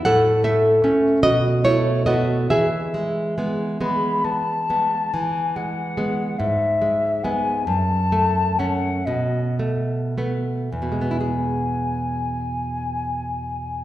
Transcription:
0.05 A2 A4 F#5
0.44 A3 A4 E5
0.84 A3 C#4
1.23 B2 F#4 D#5
1.64 A3 E4 C#5
2.06 A3 B3 F#4 D#5
2.50 E3 G#4 E5
2.94 G#3
3.38 G#3 B3
3.81 G#3 B3 B5
4.24 B3 A5
4.70 G#3 B3
5.13 E3 G#5
5.56 G#3 F#5
5.97 G#3 B3
6.39 G#2 E5
6.82 G#3
7.24 G#3 B3 G#5
7.66 F#2 A5
8.12 A3
8.59 A3 C#4 F#5
9.06 B2 D#5
9.59 A3
10.18 A3 B3
10.71 E2 G#5
10.82 B2
10.92 G#3
11.01 B3
11.11 E4
11.21 G#4

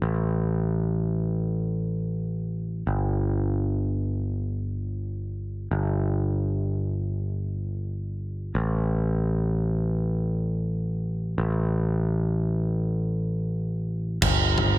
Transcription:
0.02 A1
2.87 G1
5.71 G1
8.55 A1
11.38 A1
14.22 G1, kick, floor tom, crash
14.58 mid tom

